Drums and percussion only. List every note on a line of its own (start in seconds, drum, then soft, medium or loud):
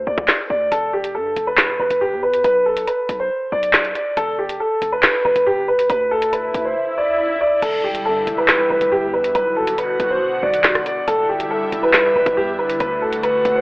0.18 kick medium
0.28 snare loud
0.28 clap loud
0.72 closed hi-hat medium
1.04 closed hi-hat loud
1.36 closed hi-hat medium
1.58 snare loud
1.58 clap loud
1.58 closed hi-hat medium
1.90 closed hi-hat medium
2.34 closed hi-hat medium
2.44 closed hi-hat medium
2.77 closed hi-hat loud
2.87 closed hi-hat medium
3.09 closed hi-hat medium
3.63 closed hi-hat medium
3.73 snare loud
3.73 clap loud
3.85 closed hi-hat soft
3.95 closed hi-hat medium
4.17 closed hi-hat medium
4.49 closed hi-hat loud
4.82 closed hi-hat medium
5.03 snare loud
5.03 clap loud
5.03 closed hi-hat medium
5.36 closed hi-hat medium
5.79 closed hi-hat medium
5.90 closed hi-hat medium
6.22 closed hi-hat loud
6.33 closed hi-hat medium
6.54 closed hi-hat medium
7.62 closed hi-hat medium
7.62 crash loud
7.95 closed hi-hat loud
8.27 closed hi-hat medium
8.48 snare loud
8.48 clap loud
8.48 closed hi-hat medium
8.81 closed hi-hat medium
9.24 closed hi-hat medium
9.35 closed hi-hat medium
9.67 closed hi-hat loud
9.78 closed hi-hat medium
10.00 closed hi-hat medium
10.54 closed hi-hat medium
10.64 snare loud
10.64 clap loud
10.75 cross-stick loud
10.75 closed hi-hat soft
10.86 closed hi-hat medium
11.08 closed hi-hat medium
11.40 closed hi-hat loud
11.72 closed hi-hat medium
11.94 snare loud
11.94 clap loud
11.94 closed hi-hat medium
12.26 kick medium
12.26 closed hi-hat medium
12.69 closed hi-hat medium
12.80 closed hi-hat medium
13.13 closed hi-hat loud
13.23 closed hi-hat medium
13.45 closed hi-hat medium